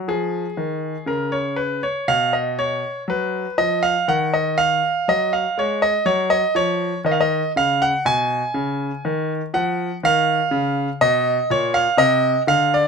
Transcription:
0.08 0.44 F3 medium
0.08 1.09 G#4 medium
0.57 0.94 D#3 medium
1.06 1.80 C#3 medium
1.06 1.33 A#4 medium
1.32 1.58 C#5 medium
1.56 1.83 B4 medium
1.83 2.09 C#5 medium
2.08 2.80 B2 medium
2.08 2.34 F5 loud
2.33 2.59 D#5 medium
2.59 3.01 C#5 medium
3.08 3.44 F#3 medium
3.08 3.59 B4 medium
3.58 3.94 F3 medium
3.58 3.84 D#5 medium
3.83 4.08 F5 loud
4.08 4.80 D#3 medium
4.08 4.34 F#5 loud
4.34 4.58 D#5 medium
4.58 5.07 F5 loud
5.08 5.44 F#3 medium
5.08 5.33 D#5 medium
5.33 5.57 F5 medium
5.58 5.93 G#3 medium
5.58 5.83 C#5 medium
5.82 6.07 D#5 medium
6.06 6.42 F#3 medium
6.06 6.31 C#5 medium
6.30 6.56 D#5 loud
6.55 6.91 F3 medium
6.55 6.99 C#5 loud
7.05 7.41 D#3 medium
7.05 7.13 D#5 medium
7.12 7.19 F5 medium
7.21 7.51 D#5 medium
7.56 7.91 C#3 medium
7.56 7.81 F5 loud
7.82 8.06 F#5 loud
8.05 8.41 B2 medium
8.05 9.31 G#5 loud
8.54 8.90 C#3 medium
9.05 9.40 D#3 medium
9.54 9.89 F3 medium
9.54 9.96 F#5 medium
10.03 10.39 D#3 medium
10.03 10.88 F5 loud
10.51 10.87 C#3 medium
11.01 11.37 B2 medium
11.01 11.50 D#5 loud
11.50 11.86 A#2 medium
11.50 11.75 C#5 loud
11.74 11.99 F5 loud
11.97 12.34 C3 medium
11.97 12.41 D#5 loud
12.47 12.84 D3 medium
12.47 12.73 F5 loud
12.74 12.88 D5 loud

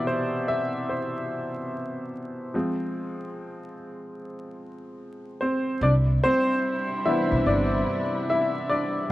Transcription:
0.00 0.85 B2 medium
0.00 0.84 C3 medium
0.00 0.84 E3 medium
0.00 2.54 D5 medium
0.00 0.48 E5 loud
0.07 0.45 C5 medium
0.48 0.90 E5 medium
0.89 2.08 C5 medium
2.54 3.73 F3 medium
2.54 3.73 G#3 soft
2.54 3.73 C4 medium
5.41 5.79 C4 medium
5.41 5.83 C5 medium
5.81 6.17 C2 loud
5.81 9.07 C3 medium
5.81 9.06 G3 medium
5.81 9.06 D4 medium
5.81 5.93 D4 medium
5.81 9.06 E4 loud
5.81 5.92 D5 medium
6.24 7.02 C4 medium
6.24 7.08 C5 loud
7.06 9.07 E3 medium
7.06 9.07 B3 medium
7.06 7.47 D4 medium
7.06 7.44 E4 medium
7.06 7.43 E5 medium
7.32 7.44 B1 medium
7.46 7.81 G1 medium
7.46 8.25 D4 medium
7.46 8.31 D5 medium
8.30 8.68 E4 medium
8.30 8.71 E5 medium
8.70 9.08 D4 medium
8.70 9.11 D5 medium

